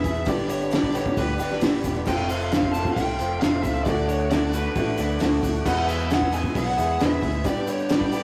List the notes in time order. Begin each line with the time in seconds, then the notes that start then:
Already playing: E2 B2 E4 G#4 B4 E5 B5
0.04 E2 E3 B3 E4 G#4, kick, open hi-hat, shaker
0.15 E3 B3 E4 G#4
0.25 G1 G2 D3 G3 B3 D4 G4 B4 D5, kick, open hi-hat, shaker
0.36 G3 B3 D4 G4
0.49 G3 B3 D4 G4 C#5, open hi-hat, shaker
0.59 G3 B3 D4 G4, shaker
0.70 G2 D3 G3 B3 D4 G4, snare, open hi-hat, shaker
0.74 D5
0.83 kick
0.92 G3 B3 D4 G4, open hi-hat, shaker
0.96 G2 D3 G3 C#5
1.06 kick, shaker
1.17 D2 G3 B3 D4 G4 B4, kick, open hi-hat, shaker
1.38 G1 G3 B3 D4 G4 B4 D5, open hi-hat, shaker
1.43 G3
1.49 G3 B3 D4 G4, snare
1.60 G1 G2 D3 G3 B3 D4 G4, snare, open hi-hat, shaker
1.82 E1 G3 B3 D4 G4, kick, open hi-hat, shaker
1.88 G3
1.94 G3 B3 D4 G4
2.05 F1 F2 C3 F3 A3 C4 F4 A4 C5 F5 G5 C6, kick, crash, shaker
2.17 F3 A3 C4 F4
2.28 C4 F4 F5, open hi-hat, shaker
2.32 F3 A3
2.40 F3 A3 C4 F4, shaker
2.51 F2 C3 F3 A3 C4 F4, snare, open hi-hat, shaker
2.63 kick
2.72 F3 A3 C4 F4 A5, open hi-hat, shaker
2.77 F2 C3
2.85 kick, shaker
2.93 C2 F3 G5, kick, open hi-hat, shaker
2.97 A3 C4 F4
3.19 F1 F3 A3 C4 F4 A4 C5, open hi-hat, shaker
3.40 F1 F2 C3 F3 F5, snare, open hi-hat, shaker
3.44 A3 C4 F4
3.62 C#2 F3 A3 C4 F4 E5, kick, open hi-hat, shaker
3.74 F3 A3 C4 F4
3.84 D2 D3 A3 D4 F#4 A4 D5 F#5, kick, open hi-hat, shaker
3.88 D6
3.97 A3 D4 F#4
4.08 A3 D4 F#4 C#5, open hi-hat, shaker
4.18 A3 D4 F#4
4.30 D3 A3 D4 F#4 D5, snare, open hi-hat, shaker
4.52 D3 A3 D4 F#4 B4, open hi-hat, shaker
4.56 D3
4.75 A1 D3 A3 D4 F#4, kick, open hi-hat, shaker
4.97 D2 D3 A3 D4 F#4 A4 D5, open hi-hat, shaker
5.10 shaker
5.19 D2 D3 A3 D4 F#4, snare, open hi-hat, shaker
5.33 snare
5.41 D2 D3 A3 D4 F#4, kick, open hi-hat, shaker
5.53 A3 D4 F#4
5.65 E2 B2 E3 G#3 B3 E4 G#4 B4 E5 F#5 G#5 E6, kick, crash, shaker
5.88 E3 G#3 B3 G#4 E5, open hi-hat, shaker
5.99 E3 G#3 B3 G#4, shaker
6.10 E2 B2 E3 G#3 B3 G#4 F#5, snare, open hi-hat, shaker
6.22 kick
6.32 B2 E3 G#3 B3 G#4 G#5, open hi-hat, shaker
6.36 E2
6.44 kick, shaker
6.55 B1 E3 G#3 B3 G#4 F#5, kick, open hi-hat, shaker
6.77 E2 E3 G#3 B3 E4 G#4 B4 E5, open hi-hat, shaker
6.89 E3 G#3 B3 G#4
7.00 E2 B2 E3 G#3 B3 G#4 E5, snare, open hi-hat, shaker
7.21 D2 E3 G#3 B3 G#4, kick, open hi-hat
7.26 E3
7.32 E3 G#3 B3 G#4
7.44 G2 D3 G3 B3 D4 G4 B4 D5 G5 D6, kick, open hi-hat, shaker
7.55 G3 B3 D4 G4
7.67 G3 B3 D4 G4 C#5, open hi-hat, shaker
7.78 G3 B3 D4 G4, shaker
7.89 G2 D3 G3 B3 D4 G4 D5, snare, open hi-hat, shaker
8.01 kick
8.11 D3 G3 B3 D4 G4, open hi-hat, shaker
8.16 G2